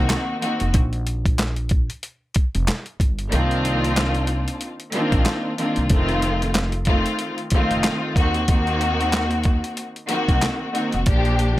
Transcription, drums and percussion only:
0.09 snare, clap, closed hi-hat
0.42 closed hi-hat
0.60 closed hi-hat
0.74 kick, closed hi-hat
0.93 closed hi-hat
1.07 closed hi-hat
1.26 kick, closed hi-hat
1.38 snare, clap, closed hi-hat
1.56 closed hi-hat
1.69 kick, closed hi-hat
1.90 closed hi-hat
2.03 closed hi-hat
2.35 kick, closed hi-hat
2.55 closed hi-hat
2.68 snare, clap, closed hi-hat
2.86 closed hi-hat
3.00 kick, closed hi-hat
3.19 closed hi-hat
3.32 closed hi-hat
3.51 closed hi-hat
3.65 closed hi-hat
3.84 closed hi-hat
3.96 snare, clap, closed hi-hat
4.15 closed hi-hat
4.27 closed hi-hat
4.48 closed hi-hat
4.61 closed hi-hat
4.80 closed hi-hat
4.92 closed hi-hat
5.12 kick, closed hi-hat
5.25 snare, clap, closed hi-hat
5.58 closed hi-hat
5.76 closed hi-hat
5.90 kick, closed hi-hat
6.09 closed hi-hat
6.22 closed hi-hat
6.42 closed hi-hat
6.54 snare, clap, closed hi-hat
6.72 closed hi-hat
6.85 kick, closed hi-hat
7.06 closed hi-hat
7.19 closed hi-hat
7.38 closed hi-hat
7.50 kick, closed hi-hat
7.71 closed hi-hat
7.83 snare, clap, closed hi-hat
8.16 kick, closed hi-hat
8.34 closed hi-hat
8.48 kick, closed hi-hat
8.67 closed hi-hat
8.81 closed hi-hat
9.01 closed hi-hat
9.12 snare, clap, closed hi-hat
9.31 closed hi-hat
9.44 kick, closed hi-hat
9.64 closed hi-hat
9.77 closed hi-hat
9.96 closed hi-hat
10.09 closed hi-hat
10.29 kick, closed hi-hat
10.42 snare, clap, closed hi-hat
10.75 closed hi-hat
10.92 closed hi-hat
11.06 kick, closed hi-hat
11.25 closed hi-hat
11.39 closed hi-hat

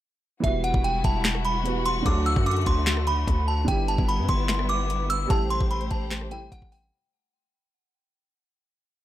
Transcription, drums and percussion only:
0.44 kick, closed hi-hat
0.64 closed hi-hat
0.74 kick
0.85 closed hi-hat
1.04 kick, closed hi-hat
1.24 finger snap, snare, closed hi-hat
1.35 cross-stick
1.45 closed hi-hat
1.66 closed hi-hat
1.85 closed hi-hat
2.06 kick, closed hi-hat
2.26 closed hi-hat
2.36 kick
2.46 closed hi-hat
2.51 closed hi-hat
2.56 closed hi-hat
2.62 closed hi-hat
2.66 kick, closed hi-hat
2.86 finger snap, snare, closed hi-hat
2.97 cross-stick
3.07 closed hi-hat
3.28 kick, closed hi-hat
3.68 kick, closed hi-hat
3.88 closed hi-hat
3.98 kick
4.09 closed hi-hat
4.29 kick, closed hi-hat
4.48 finger snap, snare, closed hi-hat
4.59 cross-stick
4.69 closed hi-hat
4.90 closed hi-hat
5.10 closed hi-hat
5.30 kick, closed hi-hat
5.50 closed hi-hat
5.61 kick
5.71 closed hi-hat
5.81 closed hi-hat
5.91 kick, closed hi-hat
6.11 finger snap, snare, closed hi-hat
6.21 cross-stick
6.31 closed hi-hat
6.52 kick, closed hi-hat
6.62 kick
6.72 open hi-hat

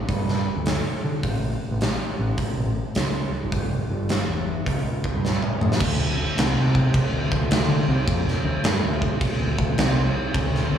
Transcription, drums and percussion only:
0.09 kick, open hi-hat
0.28 snare
0.66 snare, open hi-hat
1.23 kick, open hi-hat
1.81 snare, open hi-hat
2.38 kick, open hi-hat
2.95 snare, open hi-hat
3.52 kick, open hi-hat
4.09 snare, open hi-hat
4.66 kick, open hi-hat
5.04 kick
5.25 snare
5.42 mid tom
5.61 mid tom
5.72 snare
5.80 kick, crash
6.38 snare, crash
6.75 kick
6.94 kick, crash
7.32 kick
7.51 snare, crash
8.08 kick, crash
8.28 snare
8.64 snare, crash
9.02 kick
9.21 kick, crash
9.59 kick
9.78 snare, crash
10.34 kick, crash
10.55 snare

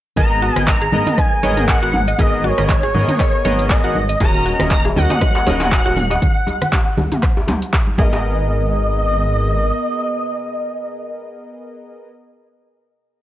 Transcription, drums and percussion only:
0.16 kick, closed hi-hat, high conga, low conga
0.56 cross-stick, closed hi-hat, low conga
0.67 kick, clap, closed hi-hat
0.92 high conga, low conga
1.06 closed hi-hat, mid tom, low conga
1.18 kick, cross-stick, closed hi-hat, high conga
1.43 closed hi-hat, high conga
1.57 closed hi-hat, mid tom
1.68 kick, clap, closed hi-hat
1.93 mid tom, high conga
2.08 closed hi-hat
2.18 kick, closed hi-hat, high conga, low conga
2.44 high conga
2.58 cross-stick, closed hi-hat, low conga
2.69 kick, clap, closed hi-hat
2.95 high conga, low conga
3.08 closed hi-hat, mid tom, low conga
3.20 kick, cross-stick, clap, closed hi-hat
3.45 closed hi-hat, mid tom, high conga
3.59 closed hi-hat
3.70 kick, clap, closed hi-hat
3.95 high conga
4.09 closed hi-hat
4.20 kick, closed hi-hat, high conga, djembe tone, low conga, shaker
4.46 shaker
4.59 cross-stick, closed hi-hat, djembe tone, low conga, shaker
4.71 kick, clap, closed hi-hat, shaker
4.85 djembe tone
4.96 high conga, low conga, djembe bass, shaker
5.10 closed hi-hat, mid tom, djembe slap, low conga, shaker
5.21 kick, cross-stick, closed hi-hat, djembe tone, high conga, shaker
5.35 djembe slap
5.47 closed hi-hat, djembe tone, high conga, djembe bass, shaker
5.60 closed hi-hat, mid tom, djembe slap, shaker
5.72 kick, clap, closed hi-hat, djembe slap, shaker
5.86 djembe tone
5.96 mid tom, high conga, shaker
6.10 closed hi-hat, djembe tone, shaker
6.22 kick, closed hi-hat, high conga, low conga
6.47 closed hi-hat, djembe tone, high conga
6.62 cross-stick, closed hi-hat, low conga
6.73 kick, clap, closed hi-hat, djembe tone
6.97 high conga, low conga, djembe bass
7.12 closed hi-hat, mid tom, djembe tone, low conga
7.23 kick, cross-stick, clap, closed hi-hat
7.37 djembe tone
7.48 closed hi-hat, mid tom, djembe slap, high conga, djembe bass
7.62 closed hi-hat
7.73 kick, clap, closed hi-hat, djembe tone
7.87 high conga
7.98 kick, high conga, djembe tone
8.13 djembe slap

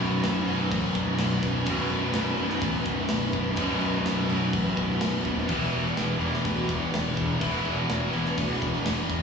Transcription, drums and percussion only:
0.23 snare, crash
0.48 crash
0.72 kick, crash
0.95 kick, crash
1.18 snare, crash
1.43 kick, crash
1.66 kick, crash
1.90 crash
2.14 snare, crash
2.37 crash
2.50 snare
2.61 kick, crash
2.85 kick, crash
3.09 snare, crash
3.32 kick, crash
3.56 kick, crash
3.81 crash
4.06 snare, crash
4.29 crash
4.53 kick, crash
4.77 kick, crash
5.01 snare, crash
5.25 kick, crash
5.49 kick, crash
5.73 crash
5.97 snare, crash
6.21 crash
6.34 snare
6.45 kick, crash
6.69 kick, crash
6.94 snare, crash
7.17 kick, crash
7.41 kick, crash
7.65 crash
7.89 snare, crash
8.13 crash
8.26 snare
8.37 kick, crash
8.62 kick, crash
8.86 snare, crash
9.09 kick, crash

